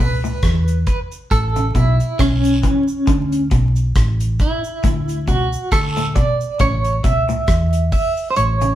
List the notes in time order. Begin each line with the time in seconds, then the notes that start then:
0.00 C#2 B2 B4, cabasa
0.24 A2, cabasa
0.43 E2, kick, cross-stick, closed hi-hat, cabasa
0.68 closed hi-hat, cabasa
0.87 B4, kick, closed hi-hat, cabasa
1.12 closed hi-hat, cabasa
1.31 A1 A4, kick, closed hi-hat, cabasa
1.56 C#3, closed hi-hat, cabasa
1.75 B1 B2 E4, kick, closed hi-hat, cabasa
2.00 closed hi-hat, cabasa
2.19 B1 C#3 C#4, kick, cross-stick, closed hi-hat, cabasa, long guiro
2.43 closed hi-hat, cabasa
2.62 E3, kick, closed hi-hat, cabasa
2.88 cabasa
3.07 D2 D3, kick, closed hi-hat, cabasa
3.32 closed hi-hat, cabasa
3.51 B1 B2, kick, closed hi-hat, cabasa
3.76 closed hi-hat, cabasa
3.95 A1, kick, cross-stick, closed hi-hat, cabasa
4.20 closed hi-hat, cabasa
4.39 E4, kick, closed hi-hat, cabasa
4.64 cabasa
4.83 D2 A2, kick, closed hi-hat, cabasa
5.08 closed hi-hat, cabasa
5.28 C#2 B2 F#4, kick, closed hi-hat, cabasa
5.53 cabasa
5.72 D2 A4, kick, cross-stick, closed hi-hat, cabasa, long guiro
5.96 A2, closed hi-hat, cabasa
6.15 B2 D5, kick, closed hi-hat, cabasa
6.41 cabasa
6.59 A1 C#3 C#5, kick, closed hi-hat, cabasa
6.84 closed hi-hat, cabasa
7.04 C#2 B2 E5, kick, closed hi-hat, cabasa
7.29 A2, closed hi-hat, cabasa
7.48 E2, kick, cross-stick, closed hi-hat, cabasa
7.73 closed hi-hat, cabasa
7.92 E5, kick, open hi-hat, cabasa
8.17 cabasa
8.30 C5
8.36 A1 C#5, closed hi-hat, cabasa
8.61 C#3, closed hi-hat, cabasa